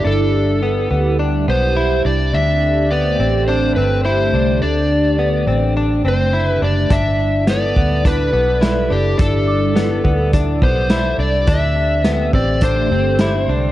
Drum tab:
HH |--------|--------|--------|x-x-x-x-|
SD |--------|--------|--------|--o---o-|
BD |--------|--------|--------|o--oo---|

HH |x-x-x-x-|x-x-x-x-|
SD |--o---o-|--o---o-|
BD |o--ooo--|o--oo---|